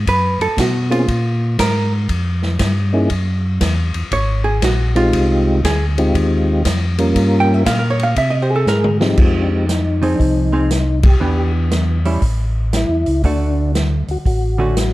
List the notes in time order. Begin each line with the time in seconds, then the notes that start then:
0.07 F#2 B4, kick, ride
0.39 F#2 A4, ride
0.57 B2 F#4, kick, snare, hi-hat pedal, ride
0.90 A#3 C4 C#4 F4 G#4, ride
1.08 A#2, kick, ride
1.58 G#2 A#4, kick, snare, hi-hat pedal, ride
2.09 F2, kick, ride
2.43 snare
2.59 G2, kick, snare, hi-hat pedal, ride
2.93 A#3 C#4 D#4 E4 G#4
3.10 F#2, kick, ride
3.61 E2, kick, snare, hi-hat pedal, ride
3.94 E2, ride
4.11 G#1 C#5, kick, ride
4.44 G#4
4.62 A#1 F#4, kick, snare, hi-hat pedal, ride
4.95 G#3 C4 D#4 F4 G4, ride
5.13 C2, kick, ride
5.64 D2 G#4, kick, snare, hi-hat pedal, ride
5.98 G#3 C4 D#4 F4 G4, ride
6.14 D#2, kick, ride
6.65 F2, kick, snare, hi-hat pedal, ride
6.98 G3 A#3 C#4 F4 A#4, ride
7.15 G2, kick, ride
7.40 G5
7.54 E5
7.65 A#2 F5, kick, snare, hi-hat pedal, ride
7.79 A#4
7.90 C#5
7.99 F5, ride
8.16 C3 E5, kick, ride
8.30 D#5
8.42 G4 C5
8.50 G#4
8.56 A4
8.66 G#2 A#4, snare, hi-hat pedal
8.84 mid tom
9.00 F3 G#3 C4 D#4 G4, snare
9.17 F2 F4, kick, crash
9.42 D4
9.51 D#4
9.69 snare, closed hi-hat
10.02 F3 C4 D#4 G#4, open hi-hat
10.14 D4
10.19 C2 D#4, kick, open hi-hat
10.52 F3 C4 D#4 G#4
10.71 snare, closed hi-hat
11.03 G4, kick, ride
11.20 E2 E3 B3 D4 G4
11.71 snare, closed hi-hat
12.05 G3 C#4 E4, open hi-hat
12.21 A1, kick, open hi-hat
12.73 E4, snare, closed hi-hat
12.89 E2
13.06 C#2, open hi-hat
13.23 D2 D3 A3 D4 F#4, kick, open hi-hat
13.75 snare, closed hi-hat
14.08 D2 F#4, open hi-hat
14.25 A1 F#4, kick, open hi-hat
14.58 D3 A3 C#4 F#4
14.77 snare, closed hi-hat